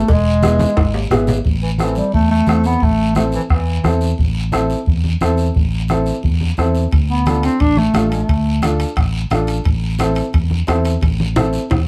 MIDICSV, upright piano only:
0, 0, Header, 1, 2, 480
1, 0, Start_track
1, 0, Key_signature, 0, "minor"
1, 0, Tempo, 341686
1, 124, Time_signature, 4, 2, 24, 8
1, 16688, End_track
2, 0, Start_track
2, 0, Title_t, "Upright piano"
2, 0, Program_c, 0, 0
2, 601, Note_on_c, 0, 59, 74
2, 608, Note_on_c, 0, 64, 67
2, 610, Note_on_c, 0, 68, 79
2, 937, Note_off_c, 0, 59, 0
2, 940, Note_off_c, 0, 64, 0
2, 941, Note_off_c, 0, 68, 0
2, 1559, Note_on_c, 0, 59, 95
2, 1564, Note_on_c, 0, 64, 79
2, 1570, Note_on_c, 0, 68, 103
2, 1895, Note_off_c, 0, 59, 0
2, 1897, Note_off_c, 0, 64, 0
2, 1900, Note_off_c, 0, 68, 0
2, 2511, Note_on_c, 0, 60, 65
2, 2518, Note_on_c, 0, 64, 56
2, 2520, Note_on_c, 0, 69, 75
2, 2850, Note_off_c, 0, 60, 0
2, 2854, Note_off_c, 0, 64, 0
2, 2855, Note_off_c, 0, 69, 0
2, 3477, Note_on_c, 0, 60, 67
2, 3479, Note_on_c, 0, 64, 65
2, 3485, Note_on_c, 0, 69, 71
2, 3813, Note_off_c, 0, 60, 0
2, 3814, Note_off_c, 0, 64, 0
2, 3817, Note_off_c, 0, 69, 0
2, 4432, Note_on_c, 0, 60, 74
2, 4436, Note_on_c, 0, 64, 62
2, 4446, Note_on_c, 0, 69, 77
2, 4771, Note_off_c, 0, 60, 0
2, 4773, Note_off_c, 0, 64, 0
2, 4778, Note_off_c, 0, 69, 0
2, 5390, Note_on_c, 0, 60, 77
2, 5395, Note_on_c, 0, 64, 68
2, 5401, Note_on_c, 0, 69, 83
2, 5730, Note_off_c, 0, 60, 0
2, 5732, Note_off_c, 0, 64, 0
2, 5736, Note_off_c, 0, 69, 0
2, 6350, Note_on_c, 0, 60, 83
2, 6356, Note_on_c, 0, 64, 78
2, 6361, Note_on_c, 0, 69, 90
2, 6690, Note_off_c, 0, 60, 0
2, 6693, Note_off_c, 0, 64, 0
2, 6696, Note_off_c, 0, 69, 0
2, 7322, Note_on_c, 0, 60, 88
2, 7323, Note_on_c, 0, 64, 74
2, 7338, Note_on_c, 0, 69, 93
2, 7656, Note_off_c, 0, 60, 0
2, 7657, Note_off_c, 0, 64, 0
2, 7664, Note_off_c, 0, 69, 0
2, 8288, Note_on_c, 0, 60, 78
2, 8291, Note_on_c, 0, 64, 74
2, 8299, Note_on_c, 0, 69, 88
2, 8620, Note_off_c, 0, 60, 0
2, 8621, Note_off_c, 0, 64, 0
2, 8625, Note_off_c, 0, 69, 0
2, 9244, Note_on_c, 0, 64, 73
2, 9247, Note_on_c, 0, 60, 85
2, 9251, Note_on_c, 0, 69, 83
2, 9578, Note_off_c, 0, 64, 0
2, 9579, Note_off_c, 0, 60, 0
2, 9581, Note_off_c, 0, 69, 0
2, 10208, Note_on_c, 0, 62, 70
2, 10211, Note_on_c, 0, 65, 59
2, 10214, Note_on_c, 0, 69, 75
2, 10540, Note_off_c, 0, 62, 0
2, 10541, Note_off_c, 0, 65, 0
2, 10543, Note_off_c, 0, 69, 0
2, 11157, Note_on_c, 0, 62, 68
2, 11166, Note_on_c, 0, 65, 68
2, 11173, Note_on_c, 0, 69, 78
2, 11495, Note_off_c, 0, 62, 0
2, 11499, Note_off_c, 0, 65, 0
2, 11503, Note_off_c, 0, 69, 0
2, 12128, Note_on_c, 0, 62, 77
2, 12129, Note_on_c, 0, 65, 71
2, 12133, Note_on_c, 0, 69, 84
2, 12460, Note_off_c, 0, 62, 0
2, 12461, Note_off_c, 0, 65, 0
2, 12463, Note_off_c, 0, 69, 0
2, 13079, Note_on_c, 0, 62, 87
2, 13084, Note_on_c, 0, 65, 78
2, 13093, Note_on_c, 0, 69, 88
2, 13416, Note_off_c, 0, 62, 0
2, 13418, Note_off_c, 0, 65, 0
2, 13423, Note_off_c, 0, 69, 0
2, 14041, Note_on_c, 0, 60, 83
2, 14044, Note_on_c, 0, 64, 76
2, 14052, Note_on_c, 0, 69, 89
2, 14377, Note_off_c, 0, 60, 0
2, 14378, Note_off_c, 0, 64, 0
2, 14383, Note_off_c, 0, 69, 0
2, 14993, Note_on_c, 0, 60, 81
2, 14996, Note_on_c, 0, 64, 79
2, 15002, Note_on_c, 0, 69, 87
2, 15333, Note_off_c, 0, 60, 0
2, 15335, Note_off_c, 0, 64, 0
2, 15338, Note_off_c, 0, 69, 0
2, 15960, Note_on_c, 0, 60, 83
2, 15965, Note_on_c, 0, 64, 72
2, 15971, Note_on_c, 0, 69, 87
2, 16297, Note_off_c, 0, 60, 0
2, 16300, Note_off_c, 0, 64, 0
2, 16303, Note_off_c, 0, 69, 0
2, 16688, End_track
0, 0, End_of_file